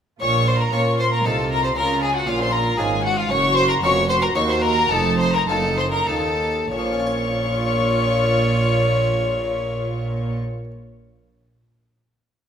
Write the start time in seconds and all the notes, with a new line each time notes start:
0.21 A#1 A#2 F4 C#5 C#6
0.47 C5 C6
0.60 A#4 A#5
0.72 A#2 A#3 C#4 F4 C#5 C#6
0.99 C5 C6
1.12 A#4 A#5
1.24 C2 C3 C4 D#4 F4 A4 A5
1.50 A#4 A#5
1.64 C5 C6
1.75 C#2 C#3 F4 A#4 A#5
2.03 G#4 G#5
2.16 F#4 F#5
2.27 A#1 A#2 A#3 C#4 F4 F5
2.40 C5 C6
2.53 A#4 A#5
2.77 G#1 G#2 A#3 C#4 F4 G#4 G#5
3.04 F#4 F#5
3.17 F4 F5
3.29 F#1 F#2 F#4 C#5 C#6
3.56 C5 C6
3.69 A#4 A#5
3.82 F1 F2 A#3 C#4 F#4 C#5 C#6
4.09 C5 C6
4.22 A#4 A#5
4.35 D#2 A#3 D#4 F#4 C#5 C#6
4.48 C5 C6
4.62 A#4 A#5
4.90 F1 F2 D#4 A4 A5
5.18 C5 C6
5.33 A#4 A#5
5.48 F#1 F#2 D#4 F4 A4 A5
5.77 C5 C6
5.92 A#4 A#5
6.07 D#2 D#4 F4 A4 A5
6.71 A#1 A#2 F4 C#5 C#6
6.79 F3
6.86 A#3
6.93 C#4
7.00 F4
7.07 C#5